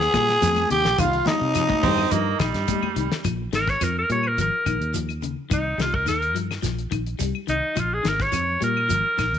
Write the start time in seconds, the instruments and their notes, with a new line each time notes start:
Already playing: tenor saxophone G#4, trumpet G#5
0.01 snare
0.13 fingered electric bass A#2, clean electric guitar G3, kick, snare, closed hi-hat, claves, shekere
0.28 snare, closed hi-hat
0.41 fingered electric bass F2, clean electric guitar F3, snare, closed hi-hat, high conga, shekere
0.56 closed hi-hat, high conga, claves
0.70 fingered electric bass D#2, clean electric guitar C3, tenor saxophone G4, trumpet G5, closed hi-hat, shekere
0.85 fingered electric bass A#1, snare, closed hi-hat, high conga
0.98 fingered electric bass C2, clean electric guitar D#3, tenor saxophone F4, trumpet F5, kick, closed hi-hat, high conga, low conga, claves, shekere
1.13 closed hi-hat
1.26 clean electric guitar G3, tenor saxophone D#4, trumpet D#5, snare, closed hi-hat, high conga, shekere
1.41 fingered electric bass C3
1.55 clean electric guitar F3, closed hi-hat, claves, shekere
1.69 kick, closed hi-hat, high conga
1.83 fingered electric bass G2, clean electric guitar G3, baritone saxophone C4, kick, open hi-hat, high conga, low conga, shekere
1.98 low conga, claves
2.11 fingered electric bass G2, clean electric guitar F3, baritone saxophone A#3, closed hi-hat, high conga, shekere
2.39 fingered electric bass A#1, clean electric guitar D#3, baritone saxophone G3, kick, snare, closed hi-hat, claves, shekere
2.54 fingered electric bass G2, snare, closed hi-hat
2.68 clean electric guitar G3, kick, closed hi-hat, high conga, shekere
2.83 muted fingered electric bass stroke, high conga, claves
2.96 fingered electric bass C2, clean electric guitar D#3, closed hi-hat, shekere
3.11 snare, high conga
3.25 fingered electric bass A#1, clean electric guitar F3, kick, closed hi-hat, claves, shekere
3.53 fingered electric bass G#1, clean electric guitar D#3, alto saxophone A#4, snare, closed hi-hat, shekere
3.68 alto saxophone C#5, kick, snare, closed hi-hat
3.81 fingered electric bass F2, clean electric guitar F3, alto saxophone A#4, closed hi-hat, claves, shekere
3.98 alto saxophone A#4
4.10 fingered electric bass A#2, clean electric guitar G3, alto saxophone C#5, closed hi-hat, shekere
4.23 claves
4.28 alto saxophone A#4
4.38 fingered electric bass G#1, clean electric guitar F3, alto saxophone A#4, closed hi-hat, shekere
4.66 fingered electric bass A#1, clean electric guitar D#3, kick, closed hi-hat, claves, shekere
4.80 fingered electric bass D#2, closed hi-hat
4.94 clean electric guitar F3, closed hi-hat, shekere
5.09 closed hi-hat, claves
5.22 clean electric guitar C#3, closed hi-hat, shekere
5.50 fingered electric bass C2, clean electric guitar D#3, alto saxophone D#4, kick, closed hi-hat, claves, shekere
5.78 fingered electric bass C2, clean electric guitar G3, alto saxophone F4, snare, closed hi-hat, shekere
5.94 alto saxophone A#4, kick
6.06 fingered electric bass D#2, clean electric guitar D#3, alto saxophone A#4, snare, closed hi-hat, claves, shekere
6.22 closed hi-hat
6.35 fingered electric bass G2, clean electric guitar F3, closed hi-hat, shekere
6.51 snare, claves
6.62 fingered electric bass A#1, clean electric guitar F3, snare, closed hi-hat, shekere
6.79 closed hi-hat
6.91 fingered electric bass A#1, clean electric guitar D#3, kick, closed hi-hat, claves, shekere
7.06 closed hi-hat
7.19 fingered electric bass C2, clean electric guitar G3, closed hi-hat, shekere
7.35 claves
7.47 fingered electric bass C2, clean electric guitar D#3, alto saxophone D#4, closed hi-hat, shekere
7.76 fingered electric bass A#1, clean electric guitar F3, alto saxophone F4, kick, closed hi-hat, claves, shekere
7.94 alto saxophone G#4
8.03 fingered electric bass G#1, clean electric guitar D#3, snare, closed hi-hat, shekere
8.08 alto saxophone A#4
8.20 alto saxophone C#5, kick, snare, closed hi-hat
8.32 fingered electric bass F2, clean electric guitar F3, closed hi-hat, claves, shekere
8.61 fingered electric bass A#2, clean electric guitar G3, alto saxophone A#4, closed hi-hat, shekere
8.77 claves
8.89 fingered electric bass G#1, clean electric guitar F3, closed hi-hat, shekere
9.18 fingered electric bass A#1, clean electric guitar D#3, kick, snare, closed hi-hat, claves, shekere
9.33 fingered electric bass D#2, closed hi-hat